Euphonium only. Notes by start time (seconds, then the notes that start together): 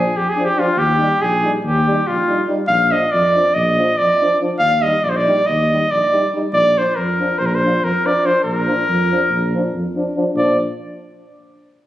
0.38 F3
0.59 F3
1.00 G3
1.44 G3
1.87 G3
2.28 G3
2.48 G3
2.91 F3
3.34 F3
3.78 F3
4.22 F3
4.41 F3
4.83 G3
5.28 G3
5.72 G3
6.13 G3
6.35 G3
6.79 F3
7.20 F3
7.66 F3
8.05 F3
8.24 F3
8.66 F3
9.11 F3
9.54 F3
9.95 F3
10.16 F3
10.36 F3